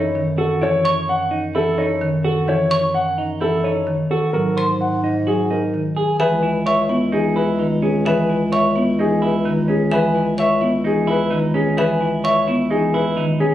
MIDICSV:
0, 0, Header, 1, 6, 480
1, 0, Start_track
1, 0, Tempo, 465116
1, 640, Time_signature, 4, 2, 24, 8
1, 13978, End_track
2, 0, Start_track
2, 0, Title_t, "Xylophone"
2, 0, Program_c, 0, 13
2, 880, Note_on_c, 0, 85, 83
2, 1192, Note_off_c, 0, 85, 0
2, 2798, Note_on_c, 0, 85, 90
2, 3111, Note_off_c, 0, 85, 0
2, 4723, Note_on_c, 0, 84, 75
2, 5033, Note_off_c, 0, 84, 0
2, 6396, Note_on_c, 0, 76, 73
2, 6710, Note_off_c, 0, 76, 0
2, 6880, Note_on_c, 0, 85, 81
2, 7192, Note_off_c, 0, 85, 0
2, 8320, Note_on_c, 0, 76, 82
2, 8632, Note_off_c, 0, 76, 0
2, 8799, Note_on_c, 0, 85, 73
2, 9112, Note_off_c, 0, 85, 0
2, 10232, Note_on_c, 0, 76, 86
2, 10549, Note_off_c, 0, 76, 0
2, 10713, Note_on_c, 0, 85, 82
2, 11030, Note_off_c, 0, 85, 0
2, 12158, Note_on_c, 0, 76, 81
2, 12471, Note_off_c, 0, 76, 0
2, 12640, Note_on_c, 0, 85, 85
2, 12952, Note_off_c, 0, 85, 0
2, 13978, End_track
3, 0, Start_track
3, 0, Title_t, "Grand piano"
3, 0, Program_c, 1, 0
3, 0, Note_on_c, 1, 73, 57
3, 232, Note_off_c, 1, 73, 0
3, 395, Note_on_c, 1, 69, 65
3, 650, Note_on_c, 1, 73, 89
3, 710, Note_off_c, 1, 69, 0
3, 956, Note_off_c, 1, 73, 0
3, 1125, Note_on_c, 1, 78, 78
3, 1434, Note_off_c, 1, 78, 0
3, 1606, Note_on_c, 1, 69, 77
3, 1838, Note_on_c, 1, 73, 63
3, 1914, Note_off_c, 1, 69, 0
3, 2151, Note_off_c, 1, 73, 0
3, 2314, Note_on_c, 1, 69, 65
3, 2566, Note_on_c, 1, 73, 79
3, 2630, Note_off_c, 1, 69, 0
3, 2874, Note_off_c, 1, 73, 0
3, 3038, Note_on_c, 1, 78, 77
3, 3351, Note_off_c, 1, 78, 0
3, 3526, Note_on_c, 1, 69, 73
3, 3754, Note_on_c, 1, 73, 57
3, 3834, Note_off_c, 1, 69, 0
3, 4070, Note_off_c, 1, 73, 0
3, 4237, Note_on_c, 1, 69, 61
3, 4470, Note_on_c, 1, 70, 75
3, 4551, Note_off_c, 1, 69, 0
3, 4788, Note_off_c, 1, 70, 0
3, 4961, Note_on_c, 1, 78, 62
3, 5272, Note_off_c, 1, 78, 0
3, 5445, Note_on_c, 1, 68, 65
3, 5691, Note_on_c, 1, 70, 47
3, 5754, Note_off_c, 1, 68, 0
3, 5996, Note_off_c, 1, 70, 0
3, 6169, Note_on_c, 1, 68, 50
3, 6400, Note_on_c, 1, 71, 81
3, 6475, Note_off_c, 1, 68, 0
3, 6712, Note_off_c, 1, 71, 0
3, 6886, Note_on_c, 1, 76, 69
3, 7194, Note_off_c, 1, 76, 0
3, 7359, Note_on_c, 1, 68, 68
3, 7597, Note_on_c, 1, 71, 64
3, 7672, Note_off_c, 1, 68, 0
3, 7911, Note_off_c, 1, 71, 0
3, 8078, Note_on_c, 1, 68, 59
3, 8326, Note_on_c, 1, 71, 83
3, 8391, Note_off_c, 1, 68, 0
3, 8634, Note_off_c, 1, 71, 0
3, 8801, Note_on_c, 1, 76, 63
3, 9112, Note_off_c, 1, 76, 0
3, 9290, Note_on_c, 1, 68, 76
3, 9528, Note_on_c, 1, 71, 54
3, 9595, Note_off_c, 1, 68, 0
3, 9835, Note_off_c, 1, 71, 0
3, 10004, Note_on_c, 1, 68, 68
3, 10251, Note_on_c, 1, 71, 83
3, 10314, Note_off_c, 1, 68, 0
3, 10556, Note_off_c, 1, 71, 0
3, 10727, Note_on_c, 1, 76, 76
3, 11035, Note_off_c, 1, 76, 0
3, 11209, Note_on_c, 1, 68, 75
3, 11460, Note_on_c, 1, 71, 70
3, 11515, Note_off_c, 1, 68, 0
3, 11759, Note_off_c, 1, 71, 0
3, 11917, Note_on_c, 1, 68, 62
3, 12162, Note_on_c, 1, 71, 85
3, 12231, Note_off_c, 1, 68, 0
3, 12473, Note_off_c, 1, 71, 0
3, 12641, Note_on_c, 1, 76, 77
3, 12952, Note_off_c, 1, 76, 0
3, 13112, Note_on_c, 1, 68, 78
3, 13352, Note_on_c, 1, 71, 62
3, 13429, Note_off_c, 1, 68, 0
3, 13669, Note_off_c, 1, 71, 0
3, 13830, Note_on_c, 1, 68, 82
3, 13978, Note_off_c, 1, 68, 0
3, 13978, End_track
4, 0, Start_track
4, 0, Title_t, "Clean electric guitar"
4, 0, Program_c, 2, 27
4, 0, Note_on_c, 2, 63, 70
4, 231, Note_off_c, 2, 63, 0
4, 393, Note_on_c, 2, 66, 90
4, 635, Note_on_c, 2, 64, 72
4, 710, Note_off_c, 2, 66, 0
4, 875, Note_on_c, 2, 73, 86
4, 950, Note_off_c, 2, 64, 0
4, 1190, Note_off_c, 2, 73, 0
4, 1352, Note_on_c, 2, 63, 64
4, 1598, Note_on_c, 2, 64, 85
4, 1669, Note_off_c, 2, 63, 0
4, 1836, Note_on_c, 2, 63, 80
4, 1911, Note_off_c, 2, 64, 0
4, 2151, Note_off_c, 2, 63, 0
4, 2317, Note_on_c, 2, 66, 98
4, 2561, Note_on_c, 2, 64, 67
4, 2631, Note_off_c, 2, 66, 0
4, 2796, Note_on_c, 2, 73, 78
4, 2872, Note_off_c, 2, 64, 0
4, 3111, Note_off_c, 2, 73, 0
4, 3282, Note_on_c, 2, 63, 65
4, 3521, Note_on_c, 2, 64, 75
4, 3593, Note_off_c, 2, 63, 0
4, 3761, Note_on_c, 2, 63, 60
4, 3833, Note_off_c, 2, 64, 0
4, 4073, Note_off_c, 2, 63, 0
4, 4242, Note_on_c, 2, 66, 80
4, 4469, Note_off_c, 2, 66, 0
4, 4481, Note_on_c, 2, 66, 54
4, 4715, Note_on_c, 2, 72, 71
4, 4792, Note_off_c, 2, 66, 0
4, 5030, Note_off_c, 2, 72, 0
4, 5199, Note_on_c, 2, 63, 57
4, 5437, Note_on_c, 2, 66, 66
4, 5512, Note_off_c, 2, 63, 0
4, 5681, Note_on_c, 2, 63, 58
4, 5751, Note_off_c, 2, 66, 0
4, 5992, Note_off_c, 2, 63, 0
4, 6156, Note_on_c, 2, 68, 72
4, 6382, Note_off_c, 2, 68, 0
4, 6395, Note_on_c, 2, 68, 83
4, 6633, Note_on_c, 2, 64, 71
4, 6710, Note_off_c, 2, 68, 0
4, 6874, Note_on_c, 2, 73, 79
4, 6949, Note_off_c, 2, 64, 0
4, 7114, Note_on_c, 2, 64, 71
4, 7190, Note_off_c, 2, 73, 0
4, 7352, Note_on_c, 2, 63, 70
4, 7430, Note_off_c, 2, 64, 0
4, 7594, Note_on_c, 2, 64, 88
4, 7669, Note_off_c, 2, 63, 0
4, 7836, Note_on_c, 2, 63, 62
4, 7910, Note_off_c, 2, 64, 0
4, 8075, Note_on_c, 2, 61, 70
4, 8151, Note_off_c, 2, 63, 0
4, 8312, Note_on_c, 2, 68, 76
4, 8390, Note_off_c, 2, 61, 0
4, 8558, Note_on_c, 2, 64, 70
4, 8629, Note_off_c, 2, 68, 0
4, 8794, Note_on_c, 2, 73, 89
4, 8871, Note_off_c, 2, 64, 0
4, 9038, Note_on_c, 2, 64, 64
4, 9110, Note_off_c, 2, 73, 0
4, 9277, Note_on_c, 2, 63, 72
4, 9351, Note_off_c, 2, 64, 0
4, 9515, Note_on_c, 2, 64, 93
4, 9591, Note_off_c, 2, 63, 0
4, 9754, Note_on_c, 2, 63, 61
4, 9830, Note_off_c, 2, 64, 0
4, 9991, Note_on_c, 2, 61, 78
4, 10070, Note_off_c, 2, 63, 0
4, 10232, Note_on_c, 2, 68, 93
4, 10309, Note_off_c, 2, 61, 0
4, 10473, Note_on_c, 2, 64, 68
4, 10549, Note_off_c, 2, 68, 0
4, 10713, Note_on_c, 2, 73, 88
4, 10790, Note_off_c, 2, 64, 0
4, 10952, Note_on_c, 2, 64, 66
4, 11030, Note_off_c, 2, 73, 0
4, 11190, Note_on_c, 2, 63, 64
4, 11269, Note_off_c, 2, 64, 0
4, 11428, Note_on_c, 2, 64, 102
4, 11509, Note_off_c, 2, 63, 0
4, 11670, Note_on_c, 2, 63, 74
4, 11748, Note_off_c, 2, 64, 0
4, 11911, Note_on_c, 2, 61, 89
4, 11989, Note_off_c, 2, 63, 0
4, 12150, Note_on_c, 2, 68, 86
4, 12229, Note_off_c, 2, 61, 0
4, 12392, Note_on_c, 2, 64, 72
4, 12469, Note_off_c, 2, 68, 0
4, 12632, Note_on_c, 2, 73, 85
4, 12709, Note_off_c, 2, 64, 0
4, 12875, Note_on_c, 2, 64, 79
4, 12949, Note_off_c, 2, 73, 0
4, 13112, Note_on_c, 2, 63, 74
4, 13190, Note_off_c, 2, 64, 0
4, 13355, Note_on_c, 2, 64, 97
4, 13429, Note_off_c, 2, 63, 0
4, 13588, Note_on_c, 2, 63, 69
4, 13670, Note_off_c, 2, 64, 0
4, 13833, Note_on_c, 2, 61, 83
4, 13908, Note_off_c, 2, 63, 0
4, 13978, Note_off_c, 2, 61, 0
4, 13978, End_track
5, 0, Start_track
5, 0, Title_t, "Marimba"
5, 0, Program_c, 3, 12
5, 157, Note_on_c, 3, 51, 77
5, 471, Note_off_c, 3, 51, 0
5, 645, Note_on_c, 3, 52, 79
5, 954, Note_off_c, 3, 52, 0
5, 1600, Note_on_c, 3, 52, 66
5, 1912, Note_off_c, 3, 52, 0
5, 2078, Note_on_c, 3, 51, 98
5, 2391, Note_off_c, 3, 51, 0
5, 2558, Note_on_c, 3, 52, 78
5, 2871, Note_off_c, 3, 52, 0
5, 3514, Note_on_c, 3, 52, 66
5, 3830, Note_off_c, 3, 52, 0
5, 3993, Note_on_c, 3, 51, 76
5, 4310, Note_off_c, 3, 51, 0
5, 4479, Note_on_c, 3, 54, 67
5, 4792, Note_off_c, 3, 54, 0
5, 5442, Note_on_c, 3, 54, 52
5, 5753, Note_off_c, 3, 54, 0
5, 5923, Note_on_c, 3, 51, 67
5, 6233, Note_off_c, 3, 51, 0
5, 6395, Note_on_c, 3, 52, 73
5, 6710, Note_off_c, 3, 52, 0
5, 7113, Note_on_c, 3, 59, 82
5, 7352, Note_on_c, 3, 52, 62
5, 7430, Note_off_c, 3, 59, 0
5, 7669, Note_off_c, 3, 52, 0
5, 7830, Note_on_c, 3, 51, 81
5, 8148, Note_off_c, 3, 51, 0
5, 8316, Note_on_c, 3, 52, 78
5, 8631, Note_off_c, 3, 52, 0
5, 9035, Note_on_c, 3, 59, 81
5, 9278, Note_on_c, 3, 52, 72
5, 9350, Note_off_c, 3, 59, 0
5, 9592, Note_off_c, 3, 52, 0
5, 9757, Note_on_c, 3, 51, 92
5, 10071, Note_off_c, 3, 51, 0
5, 10235, Note_on_c, 3, 52, 78
5, 10550, Note_off_c, 3, 52, 0
5, 10949, Note_on_c, 3, 59, 78
5, 11194, Note_on_c, 3, 52, 71
5, 11268, Note_off_c, 3, 59, 0
5, 11510, Note_off_c, 3, 52, 0
5, 11667, Note_on_c, 3, 51, 89
5, 11987, Note_off_c, 3, 51, 0
5, 12156, Note_on_c, 3, 52, 73
5, 12470, Note_off_c, 3, 52, 0
5, 12880, Note_on_c, 3, 59, 83
5, 13118, Note_on_c, 3, 52, 73
5, 13192, Note_off_c, 3, 59, 0
5, 13431, Note_off_c, 3, 52, 0
5, 13599, Note_on_c, 3, 51, 102
5, 13912, Note_off_c, 3, 51, 0
5, 13978, End_track
6, 0, Start_track
6, 0, Title_t, "Bass clarinet"
6, 0, Program_c, 4, 71
6, 0, Note_on_c, 4, 42, 60
6, 4342, Note_off_c, 4, 42, 0
6, 4478, Note_on_c, 4, 44, 66
6, 6262, Note_off_c, 4, 44, 0
6, 6402, Note_on_c, 4, 37, 75
6, 13944, Note_off_c, 4, 37, 0
6, 13978, End_track
0, 0, End_of_file